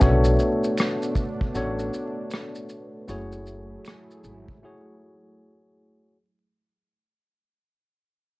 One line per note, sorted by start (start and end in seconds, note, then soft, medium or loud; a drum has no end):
0.00 0.34 B1 loud
0.00 3.05 A3 medium
0.00 1.46 B3 medium
0.00 3.05 B3 medium
0.00 0.09 C#4 medium
0.00 3.05 D4 loud
0.00 1.47 F#4 medium
0.00 1.47 A4 medium
0.00 0.23 B4 medium
0.00 1.47 C#5 medium
0.00 0.23 E5 medium
0.00 kick loud
0.00 closed hi-hat medium
0.00 shaker medium
0.07 1.50 D4 medium
0.24 shaker medium
0.39 shaker soft
0.64 shaker soft
0.78 finger snap medium
0.78 cross-stick loud
0.78 closed hi-hat medium
0.78 shaker medium
1.02 shaker soft
1.15 kick loud
1.15 shaker medium
1.41 kick loud
1.54 1.88 A1 loud
1.54 3.00 B3 medium
1.54 3.00 D4 medium
1.54 3.01 F#4 medium
1.54 3.01 A4 medium
1.54 3.02 C#5 loud
1.54 closed hi-hat medium
1.54 shaker medium
1.79 shaker soft
1.94 shaker medium
2.31 finger snap medium
2.31 cross-stick loud
2.31 closed hi-hat medium
2.31 shaker medium
2.55 shaker medium
2.69 shaker soft
3.08 3.75 F#1 loud
3.08 6.13 F#3 medium
3.08 4.54 A3 medium
3.08 6.13 A3 loud
3.08 6.13 E4 medium
3.08 4.54 E4 medium
3.08 4.55 F#4 medium
3.08 6.13 G#4 medium
3.08 4.55 G#4 medium
3.08 4.55 C#5 medium
3.08 closed hi-hat medium
3.08 shaker medium
3.32 shaker soft
3.47 shaker soft
3.85 finger snap medium
3.85 cross-stick loud
3.85 closed hi-hat medium
3.85 shaker medium
4.11 shaker soft
4.24 4.57 G#1 loud
4.24 shaker medium
4.48 kick loud
4.63 6.09 A3 medium
4.63 6.09 E4 medium
4.63 6.09 F#4 medium
4.63 6.10 G#4 medium
4.63 6.10 C#5 medium